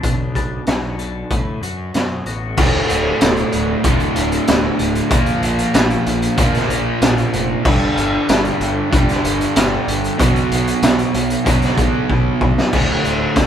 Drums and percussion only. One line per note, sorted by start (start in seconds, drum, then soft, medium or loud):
0.03 kick loud
0.03 closed hi-hat medium
0.35 kick medium
0.35 closed hi-hat medium
0.66 snare loud
0.66 closed hi-hat medium
0.99 closed hi-hat medium
1.30 kick loud
1.30 closed hi-hat medium
1.63 closed hi-hat medium
1.94 snare loud
1.94 closed hi-hat medium
2.26 closed hi-hat medium
2.57 kick loud
2.57 crash loud
2.89 closed hi-hat medium
3.21 snare loud
3.21 closed hi-hat loud
3.37 closed hi-hat medium
3.52 closed hi-hat medium
3.84 kick loud
3.84 closed hi-hat loud
4.00 closed hi-hat medium
4.16 closed hi-hat medium
4.32 closed hi-hat medium
4.47 snare loud
4.47 closed hi-hat loud
4.79 closed hi-hat medium
4.95 closed hi-hat soft
5.10 kick loud
5.10 closed hi-hat loud
5.26 closed hi-hat medium
5.42 closed hi-hat medium
5.58 closed hi-hat medium
5.74 snare loud
5.74 closed hi-hat loud
5.90 closed hi-hat medium
6.06 closed hi-hat medium
6.22 closed hi-hat medium
6.37 kick loud
6.37 closed hi-hat loud
6.54 snare soft
6.54 closed hi-hat soft
6.70 closed hi-hat medium
7.02 snare loud
7.02 closed hi-hat loud
7.18 closed hi-hat medium
7.33 closed hi-hat medium
7.65 kick loud
7.65 crash loud
7.97 closed hi-hat medium
8.29 snare loud
8.29 closed hi-hat loud
8.45 closed hi-hat medium
8.61 closed hi-hat medium
8.92 kick loud
8.92 closed hi-hat loud
9.09 snare soft
9.09 closed hi-hat medium
9.24 closed hi-hat medium
9.40 closed hi-hat soft
9.56 snare loud
9.56 closed hi-hat loud
9.88 closed hi-hat medium
10.04 closed hi-hat soft
10.20 kick loud
10.20 closed hi-hat loud
10.36 closed hi-hat medium
10.51 closed hi-hat medium
10.67 closed hi-hat medium
10.82 snare loud
10.82 closed hi-hat loud
10.99 closed hi-hat medium
11.14 closed hi-hat medium
11.30 closed hi-hat medium
11.46 kick loud
11.46 closed hi-hat loud
11.62 snare soft
11.62 closed hi-hat soft
11.77 kick medium
11.77 closed hi-hat medium
12.10 kick medium
12.41 kick loud
12.58 snare medium
12.73 kick loud
12.73 crash loud
13.04 closed hi-hat medium
13.36 kick loud
13.36 snare loud
13.36 closed hi-hat medium